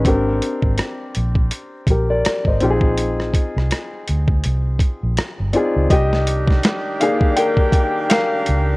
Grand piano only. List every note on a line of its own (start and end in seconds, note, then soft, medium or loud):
0.05 1.29 C4 medium
0.05 1.30 D4 medium
0.05 1.30 G4 medium
0.05 1.31 A#4 medium
1.90 2.09 G4 soft
1.90 2.09 A#4 medium
2.10 2.44 A#4 medium
2.10 2.44 D5 medium
2.47 2.81 C5 soft
2.47 2.81 D#5 medium
2.60 3.85 C4 medium
2.60 3.86 D#4 medium
2.60 3.86 F4 medium
2.60 2.70 G4 medium
2.70 3.90 G#4 medium
5.53 5.85 C4 medium
5.53 5.85 D#4 medium
5.53 5.89 F4 medium
5.53 5.86 G#4 medium
5.53 5.88 D5 medium
5.90 6.97 G4 medium
5.90 7.03 D#5 loud
7.00 8.77 D#3 medium
7.00 8.77 A#3 soft
7.00 7.35 G#4 medium
7.00 8.77 D5 medium
7.00 7.34 F5 medium
7.36 8.07 A#4 medium
7.36 8.06 G5 medium
8.10 8.77 A#4 medium
8.10 8.77 F5 loud